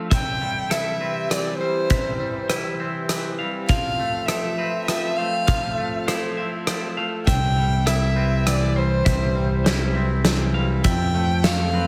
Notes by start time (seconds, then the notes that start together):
Already playing: F3 A3 C4 E4 C5 F5
0.10 C3 E3 C4 G4 E5 G5, kick, closed hi-hat
0.41 G3
0.70 E4 A4 E5, cross-stick, closed hi-hat
1.01 C4 B4
1.30 E3 D5, cross-stick, closed hi-hat
1.58 G3 C5
1.90 C3 E5, kick, closed hi-hat
2.20 G3
2.49 E4 C5, cross-stick, closed hi-hat
2.80 C4 E5
3.09 E3, cross-stick, closed hi-hat
3.39 G3 F5
3.68 F3 C4 A4 F5, kick, closed hi-hat
3.99 A3
4.25 A4 E5, cross-stick, closed hi-hat
4.58 C4 B4
4.85 F3 E5, cross-stick, closed hi-hat
5.16 A3 C5 F5
5.47 F3 F5, kick, closed hi-hat
5.78 A3
6.08 E4 C5, cross-stick, closed hi-hat
6.37 C4 E5
6.67 F3, cross-stick, closed hi-hat
6.97 A3 F5
7.25 C2 C3 E3 C4 G4 E5 G5, kick, closed hi-hat
7.57 G3
7.86 E4 A4 E5, cross-stick, closed hi-hat
8.16 C4 B4
8.46 E3 D5, cross-stick, closed hi-hat
8.76 G3 C5
9.05 C2 C3 E5, kick, closed hi-hat
9.36 G3
9.65 E4 C5, snare, closed hi-hat
9.95 C4 E5
10.25 E3, snare, closed hi-hat
10.54 G3 F5
10.83 F2 F3 C4 A4 E5 G5, kick, closed hi-hat
11.14 A3
11.44 A4 F5, snare, closed hi-hat
11.74 C4 B4